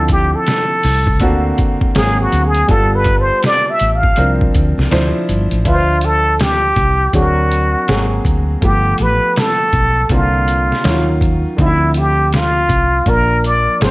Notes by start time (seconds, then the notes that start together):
Already playing: D2 D3 F3 C4 E4 A4
0.08 G4, kick, closed hi-hat
0.35 A4
0.47 snare, closed hi-hat
0.83 C2, open hi-hat
1.07 kick
1.20 D2 D3 A#3 C4 F#4, kick, closed hi-hat
1.58 kick, closed hi-hat
1.81 kick
1.95 G#1 F#3 A#3 C4 G#4, snare, closed hi-hat
2.22 F#4
2.32 D2, closed hi-hat
2.47 G#4
2.54 closed hi-hat
2.68 G1 G3 B3 F4 A4, kick, closed hi-hat
2.96 B4
3.04 kick, closed hi-hat
3.20 C5
3.43 D5, snare, closed hi-hat
3.70 E5
3.79 A1, closed hi-hat
3.95 F5
4.03 kick
4.16 C2 F3 C4 D4 A#4, closed hi-hat
4.41 kick
4.54 D2, kick, closed hi-hat
4.78 C2, snare
4.91 D2 F3 D4 E4 C5, snare, closed hi-hat
5.29 G1, closed hi-hat
5.51 A1, closed hi-hat
5.65 D2 F3 D4 F4 B4 E5, kick, closed hi-hat
5.74 C5
6.01 A4, closed hi-hat
6.40 G4, snare, closed hi-hat
6.76 C2, kick, closed hi-hat
7.13 D2 F#3 C4 D4 F#4 G#4, kick, closed hi-hat
7.22 A#4
7.51 closed hi-hat
7.88 G#1 F#3 A#3 C4 G#4, snare, closed hi-hat
8.25 D2, kick, closed hi-hat
8.61 G1 F3 A3 B3 G4, kick, closed hi-hat
8.98 A1 B4, closed hi-hat
9.36 A4, snare, closed hi-hat
9.73 B1, kick, closed hi-hat
10.09 C2 D3 A#3 C4 F4, kick, closed hi-hat
10.48 closed hi-hat
10.72 snare
10.83 D#2 D#3 F#3 C#4 E4, snare, closed hi-hat
10.91 F4
11.21 kick, closed hi-hat
11.56 D2 D3 F3 C4 D#4, kick, closed hi-hat
11.61 E4
11.66 E5
11.94 G4, closed hi-hat
12.33 F4, snare, closed hi-hat
12.69 C2, kick, closed hi-hat
13.06 A#1 F3 A#3 D4 A#4, kick, closed hi-hat
13.44 D5, closed hi-hat
13.80 G#1 F#3 A#3 C4 G#4 C5, snare, closed hi-hat